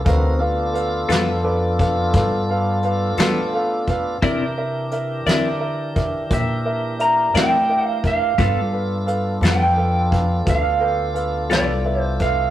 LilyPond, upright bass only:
\new Staff \with { instrumentName = "Upright bass" } { \clef bass \time 12/8 \key g \mixolydian \tempo 4. = 58 d,4. f,4. g,4. a,4. | c4. d4. bes,4. a,4. | g,4. f,4. d,4. c,4. | }